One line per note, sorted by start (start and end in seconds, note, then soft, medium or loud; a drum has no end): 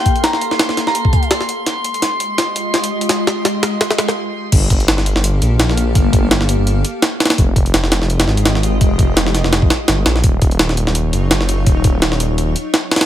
0.00 0.22 A#3 loud
0.00 0.22 G4 medium
0.00 0.22 A4 medium
0.00 0.22 F5 loud
0.00 0.19 G5 medium
0.00 4.16 C6 medium
0.06 kick medium
0.06 closed hi-hat medium
0.16 closed hi-hat soft
0.24 0.45 A#5 medium
0.24 snare loud
0.24 closed hi-hat medium
0.33 snare soft
0.41 closed hi-hat medium
0.51 snare soft
0.59 snare loud
0.59 closed hi-hat medium
0.69 snare soft
0.77 snare soft
0.77 closed hi-hat medium
0.87 1.23 A#5 medium
0.87 snare soft
0.95 closed hi-hat medium
1.05 kick medium
1.13 kick medium
1.13 closed hi-hat medium
1.23 closed hi-hat soft
1.31 snare loud
1.31 closed hi-hat medium
1.41 snare soft
1.49 closed hi-hat medium
1.66 snare soft
1.66 closed hi-hat medium
1.84 closed hi-hat medium
1.94 3.07 G#3 medium
1.94 3.08 F4 medium
1.94 3.08 G4 medium
1.94 3.08 D#5 loud
1.94 closed hi-hat soft
2.02 snare medium
2.02 closed hi-hat medium
2.20 closed hi-hat medium
2.38 snare medium
2.38 closed hi-hat medium
2.56 closed hi-hat medium
2.74 snare medium
2.74 closed hi-hat medium
2.84 closed hi-hat medium
3.01 closed hi-hat medium
3.09 snare medium
3.09 closed hi-hat medium
3.27 snare medium
3.45 snare medium
3.45 closed hi-hat medium
3.63 snare medium
3.63 closed hi-hat medium
3.81 snare medium
3.81 closed hi-hat medium
3.91 snare medium
3.98 snare medium
3.98 closed hi-hat medium
4.08 snare medium
4.52 5.14 G1 loud
4.52 kick loud
4.52 closed hi-hat medium
4.52 crash medium
4.70 kick medium
4.70 closed hi-hat medium
4.80 5.93 A#3 loud
4.80 5.93 G4 medium
4.80 5.93 A4 medium
4.80 5.93 F5 loud
4.80 closed hi-hat soft
4.88 snare loud
4.88 closed hi-hat medium
4.98 snare soft
5.06 closed hi-hat medium
5.16 5.40 G1 medium
5.16 snare medium
5.24 closed hi-hat medium
5.42 5.94 A#1 medium
5.42 closed hi-hat medium
5.60 snare loud
5.60 closed hi-hat medium
5.70 snare soft
5.77 closed hi-hat medium
5.95 6.57 G1 loud
5.95 kick loud
5.95 closed hi-hat medium
6.13 kick loud
6.13 closed hi-hat medium
6.31 snare loud
6.31 closed hi-hat medium
6.41 snare soft
6.49 closed hi-hat medium
6.59 6.83 G1 medium
6.67 closed hi-hat medium
6.85 closed hi-hat medium
7.02 snare loud
7.02 closed hi-hat medium
7.20 snare medium
7.20 closed hi-hat medium
7.25 snare medium
7.25 closed hi-hat medium
7.30 snare loud
7.30 closed hi-hat medium
7.38 8.00 F1 loud
7.38 kick loud
7.38 closed hi-hat medium
7.56 kick medium
7.56 closed hi-hat medium
7.65 8.79 G#3 loud
7.65 8.79 F4 medium
7.65 8.79 G4 medium
7.65 8.79 D#5 loud
7.65 closed hi-hat soft
7.74 snare loud
7.74 closed hi-hat medium
7.84 snare soft
7.92 snare loud
7.92 closed hi-hat medium
8.02 8.26 F1 medium
8.02 snare soft
8.10 closed hi-hat medium
8.20 snare loud
8.20 closed hi-hat medium
8.27 8.80 G#1 medium
8.27 snare soft
8.37 closed hi-hat medium
8.45 snare loud
8.45 closed hi-hat medium
8.55 snare soft
8.63 closed hi-hat medium
8.81 9.43 F1 loud
8.81 kick loud
8.81 closed hi-hat medium
8.99 kick loud
8.99 closed hi-hat medium
9.17 snare loud
9.17 closed hi-hat medium
9.27 snare medium
9.35 snare soft
9.35 closed hi-hat medium
9.44 9.69 F1 medium
9.44 snare soft
9.53 snare loud
9.53 closed hi-hat medium
9.62 kick medium
9.70 snare loud
9.70 closed hi-hat medium
9.88 10.04 G1 medium
9.88 snare loud
9.88 closed hi-hat medium
10.06 10.22 A#1 loud
10.06 snare loud
10.06 closed hi-hat medium
10.16 snare soft
10.24 10.86 D#1 loud
10.24 kick loud
10.24 closed hi-hat medium
10.42 kick loud
10.42 closed hi-hat medium
10.51 11.65 F#3 loud
10.51 11.65 D#4 medium
10.51 11.65 F4 medium
10.51 11.65 C#5 loud
10.51 closed hi-hat soft
10.59 snare loud
10.59 closed hi-hat medium
10.69 snare soft
10.77 closed hi-hat medium
10.87 11.12 D#1 medium
10.87 snare medium
10.95 closed hi-hat medium
11.13 11.65 F#1 medium
11.13 closed hi-hat medium
11.31 snare loud
11.31 closed hi-hat medium
11.41 snare soft
11.49 closed hi-hat medium
11.66 12.28 D#1 loud
11.66 kick loud
11.66 closed hi-hat medium
11.84 kick medium
11.84 closed hi-hat medium
12.02 snare loud
12.02 closed hi-hat medium
12.12 snare medium
12.20 closed hi-hat medium
12.30 12.55 D#1 medium
12.38 closed hi-hat medium
12.56 closed hi-hat medium
12.74 snare loud
12.74 closed hi-hat medium
12.91 snare medium
12.91 closed hi-hat medium
12.96 snare medium
12.96 closed hi-hat medium
13.01 snare loud
13.01 closed hi-hat medium